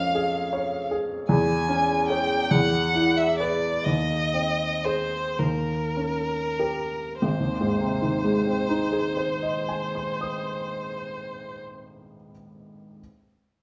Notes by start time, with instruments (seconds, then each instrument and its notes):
Already playing: grand piano F2 F3 C#4, violin F5
0.15 grand piano G#4
0.53 grand piano C#5
0.91 grand piano G#4
1.29 grand piano E2, violin G#5
1.69 grand piano C#4
2.08 grand piano G#4 C#5, violin G5
2.51 grand piano E2, violin F#5
2.95 grand piano E4
3.17 violin E5
3.38 grand piano G#4 B4, violin D5
3.84 grand piano D#2, violin D#5
4.34 grand piano C4
4.84 grand piano G#4 C5, violin C5
5.39 grand piano D#2, violin A#4
5.97 grand piano C#4
6.60 grand piano G4 A#4
7.20 grand piano G#1, violin C5
7.40 grand piano D#2
7.61 grand piano G#2
7.80 grand piano C3
8.02 grand piano D#3
8.24 grand piano G#3
8.46 grand piano C4
8.69 grand piano D#4
8.92 grand piano G#4
9.17 grand piano C5
9.42 grand piano D#5
9.69 grand piano G#5
9.95 grand piano C6
10.21 grand piano D#6